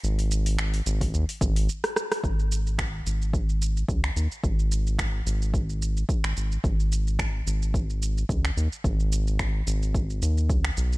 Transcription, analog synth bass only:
X:1
M:4/4
L:1/16
Q:"Swing 16ths" 1/4=109
K:G#m
V:1 name="Analog synth bass" clef=bass
G,,,6 G,,,2 D,, z G,,,2 z4 | G,,,6 G,,,6 C,,2 D,, z | G,,,6 G,,,6 z G,,, G,,,2 | G,,,6 G,,,6 C,,2 D,, z |
G,,,6 G,,,4 D,,2 C,,2 B,,,2 |]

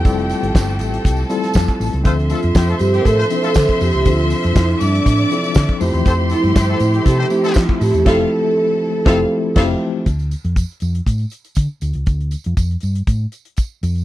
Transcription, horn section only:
X:1
M:4/4
L:1/16
Q:1/4=120
K:Dm
V:1 name="Horn section"
z16 | [FAc] z [A,FA] z [CEG] [A,FA] z [CEG] [A,FA] [FAc] z [A,FA] z4 | z16 | [GAc] z [CEA] z [CEG] [CEA] z [CEG] [CEA] [GAc] z [CEA] z4 |
[CEA]2 z6 [CEA]2 z2 [CEA]2 z2 | z16 | z16 |]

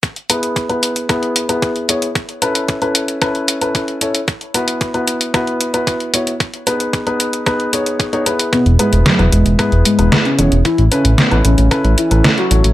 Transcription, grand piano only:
X:1
M:4/4
L:1/16
Q:1/4=113
K:E
V:1 name="Grand piano"
z2 [B,EGB]3 [B,EGB]3 [B,EGB]3 [B,EGB]3 [B,EGc] z | z2 [CEAB]3 [CEAB]3 [CEAB]3 [CEAB]3 [CEAc] z | z2 [B,EFB]3 [B,EFB]3 [B,EFB]3 [B,EFB]3 [B,EFc] z | z2 [B,DGB]3 [B,DGB]3 [B,DGB]2 [B,DGc]3 [B,DGc] [B,EGB]2- |
[B,EGB]2 [B,EGB]3 [B,EGB]3 [B,EGB]3 [B,EGB]3 [B,EGc] z | z2 [CEAB]3 [CEAB]3 [CEAB]3 [CEAB]3 [CEAc] z |]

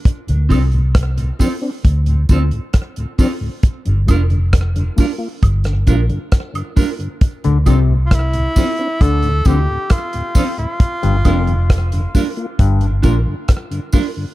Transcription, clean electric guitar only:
X:1
M:4/4
L:1/8
Q:1/4=67
K:Dm
V:1 name="Clean electric guitar"
z [CFA] z [CFA] z [CFA] z [CFA] | z [DFB] z [DFB] z [DFB] z [DFB] | z [CFA] z [CFA] z [CFA] z [CFA] | z [DFB] z [DFB] z [DFB] z [DFB] |]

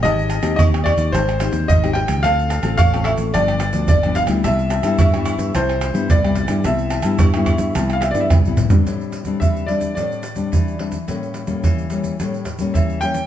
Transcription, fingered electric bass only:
X:1
M:4/4
L:1/16
Q:1/4=109
K:C
V:1 name="Fingered electric bass" clef=bass
_A,,,3 _E,, E,,3 E,, A,,,3 E,, A,,,3 _D,, | D,,3 A,,, A,,,3 A,,, G,,,3 D,, G,,,3 D,, | C,,3 G,, G,,3 G,, C,,3 G,, C,,3 G,, | C,,3 G,, G,,3 G,, C,,3 G,, C,,3 G,, |
[K:Am] z16 | z16 |]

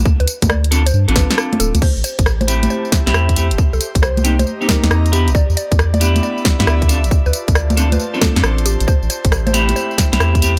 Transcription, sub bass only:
X:1
M:4/4
L:1/16
Q:"Swing 16ths" 1/4=136
K:Am
V:1 name="Sub bass" clef=bass
z D,, z D,,4- D,, G,, A,,,2 z3 D,,, D,, | z A,,, z A,,,4- A,,, z3 C,, E,,3 E,,, | z C,, z C,,4- C,, z3 _E,, =E,,3 B,,, | z E,, z E,,4- E,, z3 G,, D,,3 A,,, |
z D,, z D,,4- D,, z3 F,, A,,,3 A,,, | z A,,, z A,,,4- A,,, z3 C,, E,,3 z |]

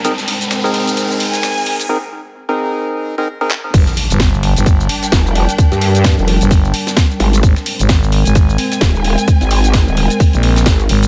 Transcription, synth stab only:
X:1
M:4/4
L:1/16
Q:"Swing 16ths" 1/4=130
K:Gphr
V:1 name="Synth stab"
[CEAB] z4 [CEAB]8- [CEAB]3 | [CEAB] z4 [CEAB]6 [CEAB] z [CEAB] z2 | z16 | z16 |
z16 | z16 |]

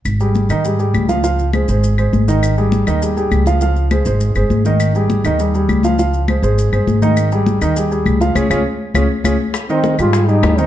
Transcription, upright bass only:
X:1
M:4/4
L:1/8
Q:1/4=202
K:Ab
V:1 name="Upright bass" clef=bass
A,,,3 A,,3 D,,2- | D,,3 A,,,3 A,,,2- | A,,,3 E,,3 D,,2- | D,,3 A,,,2 G,,, A,,,2- |
A,,,3 E,,3 D,,2- | D,,3 A,,,2 G,,, A,,,2- | A,,,3 E,,3 D,,2 | D,, D,, z2 D,, z D,, z |
z3 A,,3 E,,2 |]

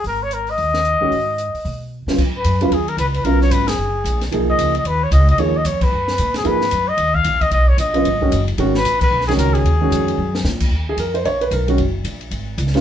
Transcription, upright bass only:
X:1
M:4/4
L:1/8
Q:"Swing" 1/4=225
K:Abdor
V:1 name="Upright bass" clef=bass
A,,,4 E,,3 z | A,,3 z C,3 =A,, | [K:D#m] G,,2 F,,2 D,,2 C,,2 | B,,,2 G,,,2 F,,,2 A,,,2 |
B,,,2 C,,2 D,,2 C,,2 | D,,2 E,,2 F,,2 A,,2 | G,,2 F,,2 D,,2 A,,,2 | B,,,2 A,,,2 G,,,2 F,,,2 |
G,,,2 A,,,2 B,,,2 C,,2 | D,,2 E,,2 F,,2 A,,2 | [K:Ebm] ^D,,2 ^E,,2 ^A,,,2 C,,2 | ^F,,,2 ^A,,,2 ^G,,,2 ^C,,2 |]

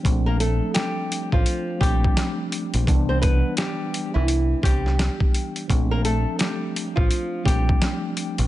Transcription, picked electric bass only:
X:1
M:4/4
L:1/16
Q:"Swing 16ths" 1/4=85
K:Bb
V:1 name="Picked electric bass" clef=bass
B,,,4 z3 A,,, z2 B,,,2 z3 B,,, | C,,4 z3 C,,3 C,,3 z3 | B,,,4 z3 A,,, z2 B,,,2 z3 B,,, |]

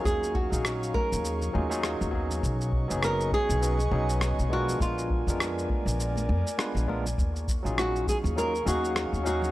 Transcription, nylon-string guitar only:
X:1
M:4/4
L:1/8
Q:"Swing 16ths" 1/4=101
K:Ebm
V:1 name="Nylon-string guitar"
A G2 B4 z | z2 B ^G4 ^F | F6 z2 | z2 G A B G2 G |]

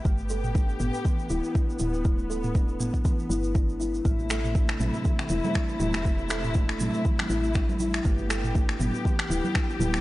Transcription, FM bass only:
X:1
M:4/4
L:1/8
Q:"Swing 16ths" 1/4=120
K:Gmix
V:1 name="FM bass" clef=bass
G,,,3 G,,, z D,,, z D,,,- | D,,,3 G,,, z G,,,3 | A,,,3 A,,, z E,,, z E,,,- | E,,,3 A,,, z A,,,3 |
G,,,3 G,,, z D,,, z D,,, |]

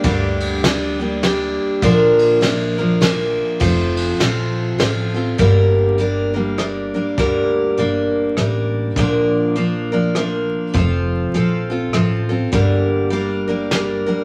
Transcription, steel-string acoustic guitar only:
X:1
M:3/4
L:1/8
Q:"Swing" 1/4=101
K:Gm
V:1 name="Steel-string acoustic guitar"
[G,,D,G,B,DG]2 [G,B,DG] [G,B,DG] [G,B,DG]2 | [B,,D,F,B,DB]2 [F,B,DB] [F,B,DB] [F,B,DB]2 | [F,CFA]2 [F,CFA]2 [F,CFA] [CFA] | [G,,D,G,B,DB]2 [G,B,DB] [G,B,DB] [G,B,DB] [G,B,DB] |
[G,,D,G,B,DB]2 [G,B,DB]2 [G,B,DB]2 | [B,,D,F,B,DB]2 [F,B,DB] [F,B,DB] [F,B,DB]2 | [F,CFA]2 [F,CFA] [CFA] [F,CFA] [CFA] | [G,,D,G,B,DB]2 [G,B,DB] [G,B,DB] [G,B,DB] [G,B,DB] |]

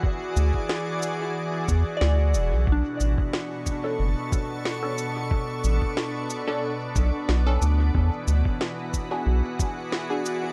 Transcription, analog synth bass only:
X:1
M:4/4
L:1/16
Q:"Swing 16ths" 1/4=91
K:Bdor
V:1 name="Analog synth bass" clef=bass
z2 D,, z6 z E,, z D,,2 E,,, B,,, | B,,, z A,,, z4 z F,,, z6 z | z2 A,,, z6 z B,,, z B,,,2 D,,2 | E,, z D,, z4 z B,,, z6 z |]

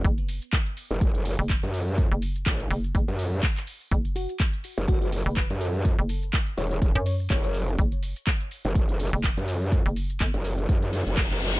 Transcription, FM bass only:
X:1
M:4/4
L:1/16
Q:"Swing 16ths" 1/4=124
K:F#m
V:1 name="FM bass" clef=bass
F,,,3 z8 F,,,2 z3 | z F,,,3 z2 F,,,2 F,,, z6 z | F,,,3 z8 F,,,2 z3 | z F,,,3 z4 z F,,3 z4 |
F,,,3 z8 F,,,2 z3 | z F,,,3 =G,,, z8 z3 |]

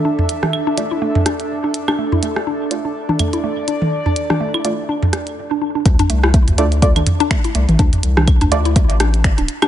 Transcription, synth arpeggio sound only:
X:1
M:4/4
L:1/16
Q:"Swing 16ths" 1/4=124
K:Dm
V:1 name="Synth arpeggio sound"
D z2 D z D A, E A, z D z2 D z D | A, E A, z D z2 D z D A, E A, z D z | z D z D A, E A, z D z4 D D D | z D A, E A, z D z2 D z D A, E A, z |
D z2 D z D A, E A, z D z2 D z D |]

